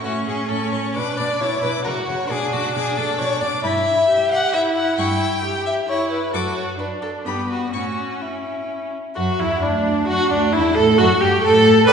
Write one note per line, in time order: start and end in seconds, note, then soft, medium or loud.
0.04 0.13 A2 medium
0.04 0.97 C#4 medium
0.04 0.12 F#4 medium
0.04 0.26 C#6 soft
0.27 0.36 A2 soft
0.27 0.50 G#4 medium
0.27 0.49 C#6 soft
0.49 0.58 A2 medium
0.49 0.74 A4 medium
0.49 0.72 C#6 soft
0.72 0.81 A2 soft
0.72 0.94 C#5 medium
0.72 0.94 C#6 soft
0.95 1.04 B2 medium
0.95 1.42 D4 medium
0.95 1.19 B4 medium
0.95 1.17 D6 medium
1.17 1.27 B2 medium
1.17 1.42 D5 medium
1.17 1.39 D6 soft
1.40 1.49 B2 medium
1.40 1.85 E4 medium
1.40 1.61 C#5 medium
1.40 1.62 D6 soft
1.62 1.71 B2 medium
1.62 1.70 B4 medium
1.62 1.85 D6 medium
1.84 1.94 C#3 medium
1.84 2.29 F#4 medium
1.84 1.92 A#4 medium
1.84 2.07 F#5 medium
2.07 2.17 C#3 medium
2.07 2.31 C#5 medium
2.07 2.29 F#5 medium
2.30 2.38 B2 medium
2.30 3.61 D4 medium
2.30 2.54 G#4 medium
2.30 2.51 D6 medium
2.52 2.61 B2 soft
2.52 2.75 F#4 medium
2.52 2.74 D6 medium
2.74 2.83 B2 medium
2.74 2.99 G#4 medium
2.74 2.96 D6 medium
2.96 3.06 B2 medium
2.96 3.20 A4 medium
2.96 3.18 D6 medium
3.18 3.28 B2 medium
3.18 3.42 C#5 medium
3.18 3.40 D6 medium
3.40 3.50 B2 medium
3.40 3.63 D5 medium
3.40 3.63 D6 medium
3.63 3.99 G2 medium
3.63 4.08 E4 medium
3.63 4.29 E5 medium
3.63 3.85 B5 medium
4.09 4.55 G4 medium
4.31 4.52 F#5 medium
4.53 4.98 E4 medium
4.53 4.61 E5 medium
4.75 4.97 F#5 medium
4.98 5.34 G2 medium
4.98 5.43 E4 medium
4.98 5.64 G5 medium
4.98 5.19 C#6 medium
5.44 5.88 G4 medium
5.66 5.74 E5 medium
5.89 6.33 E4 medium
5.89 6.10 C#5 medium
6.11 6.35 B4 medium
6.34 6.70 F#2 medium
6.34 6.78 F#4 medium
6.34 6.56 A4 medium
6.34 6.55 D6 medium
6.56 6.64 C#5 medium
6.79 7.27 D4 soft
6.79 6.87 B4 medium
7.02 7.10 A4 medium
7.25 7.63 G2 medium
7.25 7.72 B3 soft
7.25 7.49 G4 medium
7.25 7.48 B5 soft
7.50 7.73 F#4 medium
7.73 8.11 A2 soft
7.73 8.90 C#4 soft
7.73 8.22 F#4 medium
7.73 7.95 C#6 soft
8.21 8.93 E4 soft
9.16 9.38 F#2 medium
9.16 9.24 F#4 medium
9.16 9.42 F#4 medium
9.16 9.41 F#4 medium
9.39 9.47 E2 medium
9.39 9.64 E4 medium
9.39 9.61 E4 medium
9.39 9.64 E4 medium
9.62 10.07 D2 soft
9.62 10.07 D4 medium
9.62 10.10 D4 medium
10.07 10.16 F#2 medium
10.07 10.32 F#4 medium
10.07 10.30 F#4 medium
10.31 10.53 D2 medium
10.31 10.53 D4 medium
10.31 10.54 D4 medium
10.31 10.55 D4 medium
10.52 10.76 E2 medium
10.52 10.76 E4 medium
10.52 10.75 E4 medium
10.75 10.98 A2 medium
10.75 11.00 A4 medium
10.75 10.84 A4 medium
10.75 10.98 A4 medium
10.98 11.07 F#2 medium
10.98 11.20 F#4 medium
10.98 11.22 F#4 medium
10.98 11.07 F#4 medium
11.20 11.30 G2 medium
11.20 11.45 G4 medium
11.20 11.42 G4 medium
11.20 11.29 G4 medium
11.43 11.87 A2 medium
11.43 11.87 A4 loud
11.43 11.87 A4 medium
11.87 11.93 B2 medium
11.87 11.93 B4 loud
11.87 11.93 D5 medium
11.87 11.93 G5 medium